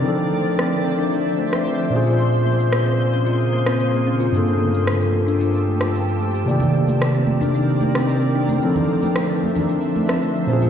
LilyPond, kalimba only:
\new Staff \with { instrumentName = "Kalimba" } { \time 4/4 \key d \phrygian \tempo 4 = 112 r8 a16 r8 c'16 r16 d'16 e'16 r16 a16 c'16 r8 des'16 f'16 | r8 bes16 r8 c'16 r16 des'16 f'16 r16 bes16 c'16 r8 des'16 f'16 | r8 a16 r8 bes16 r16 d'16 f'16 r16 a16 g'16 r8 a16 g'16 | r8 bes16 r8 c'16 r16 d'16 ees'16 r16 bes16 c'16 r8 d'16 ees'16 |
r8 a16 r8 c'16 r16 d'16 e'16 r16 a16 c'16 r8 des'16 f'16 | }